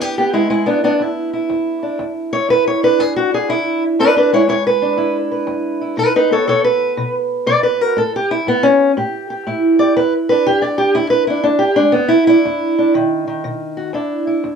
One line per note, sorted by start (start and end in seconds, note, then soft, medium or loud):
0.00 0.47 E2 medium
0.00 0.18 B3 medium
0.00 0.17 G4 loud
0.18 0.35 B3 medium
0.18 0.34 G4 medium
0.33 0.49 G#3 medium
0.33 0.50 E4 medium
0.50 0.97 E2 medium
0.50 0.67 G#3 medium
0.50 0.68 E4 medium
0.66 0.78 B3 medium
0.66 0.83 D4 medium
0.84 0.92 B3 medium
0.84 1.01 D4 medium
1.00 1.47 E2 medium
1.00 1.32 E4 medium
1.33 2.32 E4 soft
1.50 1.96 E2 medium
1.83 2.02 D4 soft
1.99 2.46 E2 medium
2.33 3.00 E4 soft
2.33 2.50 C#5 loud
2.49 2.96 E2 medium
2.49 2.67 B4 loud
2.67 2.84 C#5 medium
2.83 3.32 D4 soft
2.83 3.00 B4 medium
2.99 3.46 E2 medium
2.99 3.16 G#4 medium
3.16 3.33 F#4 loud
3.34 3.98 D4 soft
3.34 3.50 G#4 medium
3.49 3.96 E2 medium
3.49 3.83 E4 loud
3.99 4.46 E2 medium
3.99 4.15 D4 medium
3.99 4.16 B4 medium
4.17 4.33 D4 medium
4.17 4.33 B4 medium
4.33 5.96 G#3 soft
4.33 4.41 E4 medium
4.33 4.48 C#5 medium
4.48 4.95 E2 medium
4.48 4.54 E4 medium
4.48 4.66 C#5 medium
4.67 5.16 B4 loud
4.82 5.98 D4 medium
4.97 5.44 E2 medium
4.97 5.80 E4 medium
5.32 5.96 B4 soft
5.47 5.94 E2 medium
5.81 5.96 E4 soft
5.97 6.44 B2 medium
5.97 6.15 D#4 medium
5.97 6.15 B4 loud
6.16 6.32 D#4 medium
6.16 6.32 B4 medium
6.31 7.95 B3 soft
6.31 6.46 A4 medium
6.31 6.48 C#5 loud
6.47 6.94 B2 medium
6.47 6.64 A4 medium
6.47 6.64 C#5 loud
6.64 7.14 B4 loud
6.97 7.44 B2 medium
7.46 7.93 B2 medium
7.46 7.63 D5 loud
7.63 7.81 B4 medium
7.81 7.95 F#4 soft
7.81 7.97 A#4 medium
7.97 8.43 A2 medium
7.97 8.14 A4 medium
8.16 8.31 G4 medium
8.31 8.47 E4 medium
8.47 8.93 A2 medium
8.47 8.64 B3 loud
8.63 8.91 C#4 loud
8.97 9.43 A2 medium
8.97 9.29 G4 medium
9.30 9.79 G4 medium
9.47 9.93 A2 medium
9.47 10.31 E4 medium
9.79 9.94 G4 soft
9.79 9.96 D5 loud
9.96 10.43 E2 medium
9.96 10.13 B4 medium
10.29 11.29 D4 soft
10.29 10.46 B4 loud
10.47 10.93 E2 medium
10.47 10.63 G4 loud
10.62 10.79 D5 medium
10.78 10.95 G4 loud
10.95 11.42 E2 medium
10.95 11.10 E4 medium
11.10 11.27 B4 loud
11.27 11.42 D4 medium
11.27 11.44 E4 medium
11.44 11.91 E2 medium
11.44 11.61 D4 medium
11.59 11.77 G4 medium
11.76 11.93 G#3 soft
11.76 11.94 D4 medium
11.92 12.41 E2 medium
11.92 12.10 B3 medium
12.08 12.26 E4 loud
12.27 12.77 D4 medium
12.27 12.94 E4 loud
12.45 12.91 E2 medium
12.79 12.93 D4 medium
12.94 13.41 B2 medium
12.94 13.26 D#3 medium
13.28 13.92 D#3 medium
13.44 13.91 B2 medium
13.77 13.92 F#4 soft
13.93 14.40 E2 medium
13.93 14.55 D4 soft
13.93 14.27 E4 soft
14.27 14.55 E4 soft
14.44 14.55 E2 medium